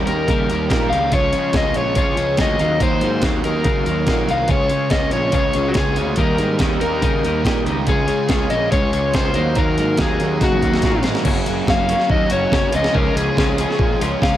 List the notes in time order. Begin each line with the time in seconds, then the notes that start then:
Already playing: D#3 G3 A#3 G4 A#4
0.06 D#2 A#3 D#4 A#4, closed hi-hat
0.11 G3
0.28 C#3 D#3 G3 A#3 G4 A#4, kick, closed hi-hat
0.50 D#2 G3 G4 A#4, closed hi-hat
0.69 A#2 D#3 G3 A#3 D#4 G4 A#4, kick, snare, closed hi-hat
0.89 C#2 G3 A#3 D#4 G4 A#4 F5, closed hi-hat
1.11 C#2 C#3 F3 G#3 C#4 F4 C#5, kick, closed hi-hat
1.32 C#3 G#3 C#4 F4 C#5, closed hi-hat
1.53 C#2 C#3 G#3 C#4 F4 C#5, kick, snare, closed hi-hat
1.57 D#5
1.74 A#1 G#3 C#4 F4 C#5, closed hi-hat
1.95 C#2 C#3 F3 G#3 C#4 F4 C#5, kick, closed hi-hat
2.16 C#2 G#3 C#4 F4 C#5, closed hi-hat
2.37 D2 C#3 G#3 C#4 F4 C#5 D#5, kick, snare, closed hi-hat
2.58 D#2 D#3 F#3 A#3 D#4 F#4 A#4 F5, closed hi-hat
2.80 D#2 D#3 F#3 A#3 D#4 F#4 A#4 C5 F5, kick, closed hi-hat
3.01 G#2 D#4 F#4 A#4 F5, closed hi-hat
3.22 D#2 D#3 F#3 A#3 D#4 F#4 A#4 F5, kick, snare, closed hi-hat
3.26 D#4
3.43 D#2 D#4 A#4, closed hi-hat
3.47 F#3 A#3
3.64 C#3 D#3 A#3 D#4 F#4 A#4 F5, kick, closed hi-hat
3.86 D#2 D#4 F#4 A#4 F5, closed hi-hat
4.06 A#2 D#3 F#3 A#3 D#4 F#4 A#4 F5, kick, snare, closed hi-hat
4.27 C2 D#4 F#4 A#4 F5, closed hi-hat
4.31 F#3 A#3 F5
4.48 C#2 C#3 G#3 C#4 F4 G#4 C#5, kick, closed hi-hat
4.69 C#3 C#4 F4 G#4 C#5, closed hi-hat
4.90 C#2 C#3 G#3 C#4 F4 G#4 C#5 D#5, kick, snare, closed hi-hat
5.11 A#1 C#4 F4 C#5, closed hi-hat
5.15 G#3
5.32 C#2 C#3 G#3 C#4 F4 G#4 C#5, kick, closed hi-hat
5.53 C#2 C#4 F4 G#4 C#5, closed hi-hat
5.68 F#4
5.74 C#2 C#3 G#3 C#4 F4 G#4, kick, snare, closed hi-hat
5.78 C#5
5.96 D2 C#4 F4 G#4 C#5, closed hi-hat
6.02 G#3
6.16 D#2 D#3 G3 A#3 D#4 G4 A#4 D#5, kick, closed hi-hat
6.38 G#2 A#3 D#4 G4 D#5, closed hi-hat
6.58 D#2 D#3 G3 A#3 D#4 G4 D#5, kick, snare, closed hi-hat
6.64 A#3 D#4
6.81 D#2 A#3 D#4 A#4, closed hi-hat
6.86 G3
7.02 C#3 D#3 G3 A#3 D#4 G4 D#5, kick, closed hi-hat
7.24 D#2 A#3 D#4 G4 D#5, closed hi-hat
7.44 A#2 D#3 G3 A#3 D#4 G4 D#5, kick, snare, closed hi-hat
7.65 C#2 A#3 D#4 G4 D#5, closed hi-hat
7.70 G3
7.87 C#2 C#3 G#3 C#4 F4 G#4 C#5, kick, closed hi-hat
8.07 C#3 C#4 F4 G#4 C#5, closed hi-hat
8.29 C#2 C#3 G#3 C#4 F4 G#4 C#5, kick, snare, closed hi-hat
8.50 A#1 F4 D#5, closed hi-hat
8.55 G#3 C#4
8.71 C#2 C#3 G#3 C#4 F4 G#4 C#5, kick, closed hi-hat
8.93 C#2 C#4 F4 G#4 C#5, closed hi-hat
9.13 C#2 C#3 G#3 C#4 F4 G#4 C5 C#5, kick, snare, closed hi-hat
9.18 C#4 F4
9.34 D#2 D#3 A#3 D#4 F#4 A#4 F5, closed hi-hat
9.39 F#3
9.55 D#2 D#3 A#3 D#4 F#4 A#4 F5, kick, closed hi-hat
9.60 F#3 A#3 D#4
9.77 G#2 D#4 F#4 A#4 F5, closed hi-hat
9.97 D#2 D#3 D#4 F#4 A#4 F5, kick, snare, closed hi-hat
10.01 F#3 A#3 D#4 G#4
10.20 D#2 A#3 D#4, closed hi-hat
10.26 F#3
10.41 C#3 D#3 A#3 D#4 F#4 A#4 F5, kick, snare, closed hi-hat
10.52 high tom
10.62 D#2 D#4 F#4 A#4 F5, kick, closed hi-hat
10.74 snare
10.82 A#2 D#3 F#3 D#4 F#4 A#4 F5, kick, snare, closed hi-hat
10.86 A#3 D#4
10.92 mid tom
11.03 G#2 D#4 F#4 A#4 F5, snare, closed hi-hat
11.07 F#3 A#3
11.15 snare
11.25 F#1 F#2 C#3 F#3 A#3 C#4 F#4, kick, crash
11.46 F#1 F#3 A#3 C#4 F#4, closed hi-hat
11.67 F#1 C#3 F#3 A#3 C#4 F#4 F5, kick, snare
11.88 F#3 A#3 C#4 F#4, closed hi-hat
12.00 snare
12.10 D#2 D#5, kick
12.30 F#1 F#3 A#3 C#4 F#4 C#5, closed hi-hat
12.52 F#1 F#2 C#3 F#3 A#3 C#4 F#4, kick, snare
12.72 C#2 C#3 F3 G#3 C#4 F4 D#5, closed hi-hat
12.84 snare
12.93 C#2 C#3 F3 G#3 C#4 F4 A#4, kick
13.15 C#2 G#3 C#4 F4 G#4, closed hi-hat
13.37 C#2 C#3 F3 G#3 C#4 F4, kick, snare
13.58 F3 G#3 C#4 F4, closed hi-hat
13.71 snare
13.79 A#2, kick
14.00 C#2 G#3 C#4 F4, closed hi-hat
14.22 C#2 C#3 F3 G#3 C#4 F4 F5, kick, snare